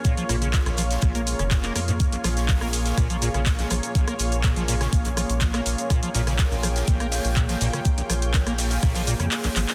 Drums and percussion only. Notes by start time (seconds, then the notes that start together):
0.05 kick, closed hi-hat, shaker
0.17 closed hi-hat, shaker
0.29 cross-stick, open hi-hat, shaker
0.42 closed hi-hat, shaker
0.53 kick, snare, clap, closed hi-hat, shaker
0.66 cross-stick, closed hi-hat, shaker
0.77 open hi-hat, shaker
0.91 snare, closed hi-hat, shaker
1.02 kick, cross-stick, closed hi-hat, shaker
1.15 closed hi-hat, shaker
1.27 open hi-hat, shaker
1.39 cross-stick, closed hi-hat, shaker
1.51 kick, snare, clap, closed hi-hat, shaker
1.63 clap, closed hi-hat, shaker
1.76 cross-stick, open hi-hat, shaker
1.88 closed hi-hat, shaker
2.00 kick, closed hi-hat, shaker
2.12 closed hi-hat, shaker
2.24 cross-stick, snare, open hi-hat, shaker
2.37 snare, closed hi-hat, shaker
2.48 kick, snare, clap, closed hi-hat, open hi-hat, shaker
2.61 cross-stick, shaker
2.73 open hi-hat, shaker
2.86 snare, closed hi-hat, shaker
2.98 kick, cross-stick, closed hi-hat, shaker
3.10 closed hi-hat, shaker
3.22 open hi-hat, shaker
3.34 cross-stick, closed hi-hat, shaker
3.46 kick, snare, clap, closed hi-hat, shaker
3.58 snare, closed hi-hat, shaker
3.70 cross-stick, open hi-hat, shaker
3.83 closed hi-hat, shaker
3.95 kick, closed hi-hat, shaker
4.08 cross-stick, closed hi-hat, shaker
4.19 open hi-hat, shaker
4.32 closed hi-hat, shaker
4.44 kick, cross-stick, snare, clap, closed hi-hat, shaker
4.56 closed hi-hat, shaker
4.68 open hi-hat, shaker
4.81 cross-stick, snare, closed hi-hat, shaker
4.93 kick, closed hi-hat, shaker
5.05 closed hi-hat, shaker
5.17 cross-stick, open hi-hat, shaker
5.30 closed hi-hat, shaker
5.40 kick, snare, clap, closed hi-hat, shaker
5.42 shaker
5.54 cross-stick, clap, closed hi-hat, shaker
5.66 open hi-hat, shaker
5.78 closed hi-hat, shaker
5.90 kick, cross-stick, closed hi-hat, shaker
6.03 closed hi-hat, shaker
6.15 snare, open hi-hat, shaker
6.27 cross-stick, snare, closed hi-hat, shaker
6.39 kick, snare, clap, closed hi-hat, open hi-hat, shaker
6.52 shaker
6.63 cross-stick, open hi-hat, shaker
6.76 snare, closed hi-hat, shaker
6.88 kick, closed hi-hat, shaker
7.00 cross-stick, closed hi-hat, shaker
7.12 snare, open hi-hat, shaker
7.25 closed hi-hat, shaker
7.36 kick, cross-stick, clap, closed hi-hat, shaker
7.49 snare, closed hi-hat, shaker
7.61 open hi-hat, shaker
7.73 cross-stick, closed hi-hat, shaker
7.85 kick, closed hi-hat, shaker
7.98 closed hi-hat, shaker
8.10 cross-stick, open hi-hat, shaker
8.22 closed hi-hat, shaker
8.34 kick, snare, clap, closed hi-hat, shaker
8.47 cross-stick, closed hi-hat, shaker
8.58 snare, open hi-hat, shaker
8.70 snare, closed hi-hat, open hi-hat, shaker
8.83 kick, cross-stick, snare, closed hi-hat, open hi-hat, shaker
8.95 snare, closed hi-hat, open hi-hat, shaker
9.07 open hi-hat, shaker
9.20 cross-stick, closed hi-hat, shaker
9.31 snare, clap, closed hi-hat, open hi-hat, shaker
9.43 snare, clap, closed hi-hat, open hi-hat, shaker
9.55 snare, clap, open hi-hat, shaker
9.69 snare, clap, closed hi-hat, open hi-hat, shaker